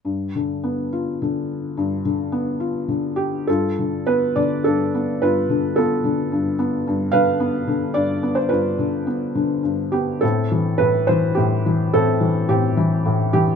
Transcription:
<<
  \new Staff \with { instrumentName = "Felt piano" } { \time 3/4 \key g \mixolydian \tempo 4 = 106 << { r2. | r2 r8 g'8 | a'4 b'8 d''8 a'4 | b'4 a'4. r8 |
r8 f''4. d''8. c''16 | b'2 r8 g'8 | a'4 b'8 c''8 g'4 | a'4 g'4. g'8 | } \\ { r2. | r2. | f'4. r4. | f'4 f'4. r8 |
r8 b'4. r4 | f'2 r4 | c'4. r4. | c'4 c'4. r8 | } >> }
  \new Staff \with { instrumentName = "Felt piano" } { \clef bass \time 3/4 \key g \mixolydian g,8 d8 b8 f'8 d4 | g,8 d8 b8 f'8 d4 | g,8 d8 b8 d8 g,8 b8 | g,8 d8 b8 d8 g,8 b8 |
g,8 d8 b8 d8 g,8 b8 | g,8 d8 b8 d8 g,8 b8 | a,8 e8 a,8 e8 a,8 e8 | a,8 e8 a,8 e8 a,8 e8 | }
>>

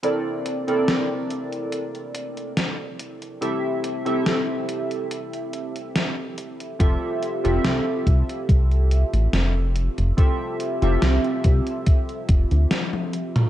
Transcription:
<<
  \new Staff \with { instrumentName = "Synth keys" } { \time 4/4 \key f \major \tempo 4 = 71 <c' e' a' bes' d''>8. <c' e' a' bes' d''>16 r2. | <c' e' g' a' e''>8. <c' e' g' a' e''>16 r2. | <c' f' g' a' e''>8. <c' f' g' a' e''>16 r2. | <c' f' g' a' e''>8. <c' f' g' a' e''>16 r2. | }
  \new Staff \with { instrumentName = "Analog synth bass" } { \clef bass \time 4/4 \key f \major r1 | r1 | f,,16 r8 f,,16 c,16 r16 c,16 r16 c,8. a,,16 f,,8. f,,16 | r8. f,,16 c,16 r16 c,16 r8. f,,16 d,16 r4 | }
  \new DrumStaff \with { instrumentName = "Drums" } \drummode { \time 4/4 hh8 hh16 hh16 <hh sn>8 hh16 hh16 hh16 hh16 hh16 hh16 <hh sn>8 hh16 hh16 | hh8 hh16 hh16 <hh sn>8 hh16 hh16 hh16 hh16 hh16 hh16 <hh sn>8 hh16 hh16 | <hh bd>8 hh16 hh16 <hh sn>8 <hh bd>16 hh16 <hh bd>16 hh16 hh16 hh16 <hh sn>8 hh16 hh16 | <hh bd>8 hh16 hh16 <hh sn>16 hh16 <hh bd>16 hh16 <hh bd>16 hh16 <hh bd>16 hh16 <hh sn tommh>16 tommh16 hh16 <hh toml>16 | }
>>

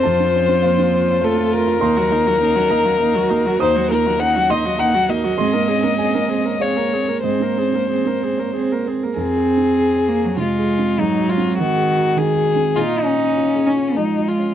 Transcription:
<<
  \new Staff \with { instrumentName = "Violin" } { \time 3/4 \key aes \mixolydian \tempo 4 = 100 c''2 a'8 bes'8~ | bes'2. | c''8 bes'8 ges''8 ees''8 ges''8 ees''8~ | ees''2 des''4 |
c''2~ c''8 r8 | aes'2 f'4 | ees'8 f'8 ges'4 aes'4 | f'8 des'4. ees'8 f'8 | }
  \new Staff \with { instrumentName = "Grand piano" } { \time 3/4 \key aes \mixolydian << { a''4 f''4. r8 | c'''4. bes''4. | ees'''4. c'''8 bes''4 | c'''4 aes''4 f''4 |
ees''2~ ees''8 r8 | r2. | r2. | r2. | } \\ { <f, f'>16 c'16 des'16 c'16 bes16 c'16 c''16 des''16 c''16 f'16 a'16 f'16 | ees,16 ees'16 f'16 ees'16 des'16 ees'16 ees''16 f''16 ees''16 ges'16 bes'16 ges'16 | ees,16 ees'16 f'16 ees'16 des'16 ees'16 ees''16 f''16 ees''16 ges'16 bes'16 ges'16 | aes,16 c'16 des'16 c'16 bes16 c'16 c''16 des''16 c''16 aes'16 bes'16 aes'16 |
aes,16 c'16 des'16 c'16 bes16 c'16 c''16 des''16 c''16 aes'16 bes'16 aes'16 | \tuplet 3/2 { f,8 aes'8 c'8 aes'8 c''8 aes'8 c8 aes'8 c'8 } | \tuplet 3/2 { aes,8 ges'8 c'8 ges'8 aes'8 ges'8 ees8 ges'8 c'8 } | \tuplet 3/2 { bes,8 f'8 des'8 f'8 aes'8 f'8 f8 f'8 des'8 } | } >> }
  \new Staff \with { instrumentName = "Viola" } { \time 3/4 \key aes \mixolydian f'2 f'4 | ees'16 ges'16 ees'16 ges'16 ees'16 ges'16 ees'16 ges'16 ees'16 ges'16 ees'16 ges'16 | ees'16 ges'16 ees'16 ges'16 ees'16 ges'16 ees'16 ges'16 ees'16 ges'16 ees'16 ges'16 | aes'16 bes'16 aes'16 bes'16 aes'16 bes'16 aes'16 bes'16 aes'16 bes'16 aes'16 bes'16 |
aes'16 bes'16 aes'16 bes'16 aes'16 bes'16 aes'16 bes'16 aes'16 bes'16 aes'16 bes'16 | r2. | r2. | r2. | }
  \new Staff \with { instrumentName = "Cello" } { \time 3/4 \key aes \mixolydian f8 f4. a4 | bes16 ges16 bes16 ges16 bes16 ges16 bes16 ges16 bes16 ges16 bes16 ges16 | bes16 ges16 bes16 ges16 bes16 ges16 bes16 ges16 bes16 ges16 bes16 ges16 | c'16 bes16 c'16 bes16 c'16 bes16 c'16 bes16 c'16 bes16 c'16 bes16 |
c'16 bes16 c'16 bes16 c'16 bes16 c'16 bes16 c'16 bes16 c'16 bes16 | c'4. bes16 ges16 aes4 | ges4 ees4. r8 | ees'4. des'8 aes4 | }
>>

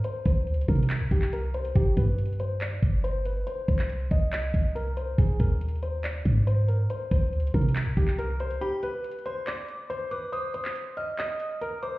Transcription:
<<
  \new Staff \with { instrumentName = "Synth bell" } { \time 4/4 \key c \minor \tempo 4 = 140 r1 | r1 | r1 | r1 |
r1 | b''4. c'''8 d'''4. d'''8 | ees'''4. f'''8 ees'''4. d'''8 | }
  \new Staff \with { instrumentName = "Grand piano" } { \time 4/4 \key c \minor c''8 c''4 bes'4 g'8 bes'8 c''8 | g'8 b'4 c''8 d''4 c''8 b'8 | c''8 c''4 ees''8 ees''4 bes'8 c''8 | aes'8 bes'4 c''8 d''4 c''8 bes'8 |
c''8 c''4 bes'4 g'8 bes'8 c''8 | g'8 b'4 c''8 d''4 c''8 b'8 | c''8 c''4 ees''8 ees''4 bes'8 c''8 | }
  \new Staff \with { instrumentName = "808-style bass" } { \clef bass \time 4/4 \key c \minor r8 c,8 ees,16 c,16 c8. bes,,16 c,4. | g,,8 g,2 g,,4. | r8 c,4 c,4 c,4. | aes,,8 ees,2 aes,4. |
r8 c,8 ees,16 c,16 c8. bes,,16 c,4. | r1 | r1 | }
  \new DrumStaff \with { instrumentName = "Drums" } \drummode { \time 4/4 hh8 <hh bd>8 \tuplet 3/2 { hh16 hh16 hh16 <hh bd>16 hh16 hh16 } <hc hh>8 <hh bd>16 hc16 hh8 <hh hho>16 hh16 | <hh bd>8 <hh bd>8 \tuplet 3/2 { hh16 hh16 hh16 hh16 r16 r16 } <hc hh>8 <hh bd>8 hh8 hh8 | hh8 <hh bd>16 hc16 hh8 <hh bd>8 <hc hh>8 <hh bd>8 hh8 hh8 | <hh bd>8 <hh bd>8 \tuplet 3/2 { hh16 hh16 hh16 hh16 r16 r16 } <hc hh>8 <hh bd>8 hh8 hh8 |
hh8 <hh bd>8 \tuplet 3/2 { hh16 hh16 hh16 <hh bd>16 hh16 hh16 } <hc hh>8 <hh bd>16 hc16 hh8 <hh hho>16 hh16 | hh8 hh8 \tuplet 3/2 { hh16 hh16 hh16 hh16 r16 r16 } <hc hh>8 hh8 hh8 hh8 | hh8 hh16 hc16 hh8 hh8 <hc hh>8 hh8 hh8 hh8 | }
>>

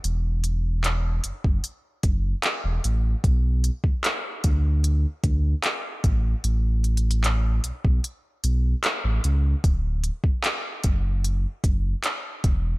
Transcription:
<<
  \new Staff \with { instrumentName = "Sub bass" } { \clef bass \time 4/4 \key d \major \tempo 4 = 75 e,,4. fis,,16 fis,,16 r8 fis,,8 r16 e,,16 a,,8 | b,,8. d,16 r8 d,4 d,8 r8 a,,8 | a,,4. b,,16 b,,16 r8 b,,8 r16 a,,16 cis,8 | d,,8. fis,,16 r8 fis,,4 fis,,8 r8 e,,8 | }
  \new DrumStaff \with { instrumentName = "Drums" } \drummode { \time 4/4 hh8 hh8 <hc hh>8 hh16 bd16 hh8 <hh bd>8 <hc hh>8 hh8 | <hh bd>8 hh16 bd16 <hc hh>8 <hh bd>8 hh8 <hh bd>8 <hc hh>8 <hh bd>8 | \tuplet 3/2 { hh16 r16 r16 hh16 hh16 hh16 } <hc hh>8 hh16 bd16 hh8 hh8 <hc hh>8 hh8 | <hh bd>8 hh16 bd16 <hc hh>8 <hh bd>8 hh8 <hh bd>8 <hc hh>8 <hh bd>8 | }
>>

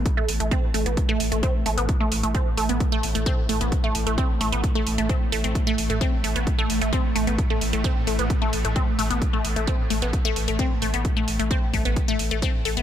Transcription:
<<
  \new Staff \with { instrumentName = "Synth arpeggio sound" } { \time 4/4 \key a \minor \tempo 4 = 131 r16 a16 r16 a16 c'16 r16 a16 b16 r16 a16 r16 a16 c'16 r16 a16 b16 | r16 a16 r16 a16 c'16 r16 a16 b16 r16 a16 r16 a16 c'16 r16 a16 b16 | r16 a16 r16 a16 c'16 r16 a16 b16 r16 a16 r16 a16 c'16 r16 a16 c'16 | r16 a16 r16 a16 c'16 r16 a16 b16 r16 a16 r16 a16 c'16 r16 a16 b16 |
r16 a16 r16 a16 c'16 r16 a16 b16 r16 a16 r16 a16 c'16 r16 a16 b16 | r16 a16 r16 a16 c'16 r16 a16 b16 r16 a16 r16 a16 c'16 r16 a16 b16 | r16 a16 r16 a16 c'16 r16 a16 b16 r16 a16 r16 a16 c'16 r16 a16 b16 | }
  \new Staff \with { instrumentName = "Synth drone" } { \clef bass \time 4/4 \key a \minor <a, a>1~ | <a, a>1~ | <a, a>1~ | <a, a>1~ |
<a, a>1~ | <a, a>1~ | <a, a>1 | }
  \new Staff \with { instrumentName = "Sub bass" } { \clef bass \time 4/4 \key a \minor r8 a,,16 a,,16 r8 a,,16 a,,16 r8 a,,16 a,,16 r8 a,,16 a,,16 | r8 a,,16 a,,16 r8 a,,16 a,,16 r8 a,,16 a,,16 r8 a,,16 a,,16 | r8 a,,16 a,,16 r8 a,,16 a,,16 r8 a,,16 a,,16 r8 a,,16 a,,16 | r8 a,,16 a,,16 r8 a,,16 a,,16 r8 a,,16 a,,16 r8 a,,16 a,,16 |
r8 a,,16 a,,16 r8 a,,16 a,,16 r8 a,,16 a,,16 r8 a,,16 a,,16 | r8 a,,16 a,,16 r8 a,,16 a,,16 r8 a,,16 a,,16 r8 a,,16 a,,16 | r8 a,,16 a,,16 r8 a,,16 a,,16 r8 a,,16 a,,16 r8 a,,16 a,,16 | }
  \new DrumStaff \with { instrumentName = "Drums" } \drummode { \time 4/4 <hh bd>8 hho16 hh16 <hh bd>8 hho16 hh16 <hh bd>8 hho16 hh16 <hh bd>8 hho16 hh16 | <hh bd>8 hho16 hh16 <hh bd>8 hho16 hh16 <hh bd>8 hho16 hh16 <hh bd>8 hho16 hh16 | <hh bd>8 hho16 hh16 <hh bd>8 hho16 hh16 <hh bd>8 hho16 hh16 <hh bd>8 hho16 hh16 | <hh bd>8 hho16 hh16 <hh bd>8 hho16 hh16 <hh bd>8 hho16 hh16 <hh bd>8 hho16 hh16 |
<hh bd>8 hho16 hh16 <hh bd>8 hho16 hh16 <hh bd>8 hho16 hh16 <hh bd>8 hho16 hh16 | <hh bd>8 hho16 hh16 <hh bd>8 hho16 hh16 <hh bd>8 hho16 hh16 <hh bd>8 hho16 hh16 | <hh bd>8 hho16 hh16 <hh bd>8 <hho bd>16 hh16 <hh bd>8 hho16 hh16 <hh bd>8 hho16 hh16 | }
>>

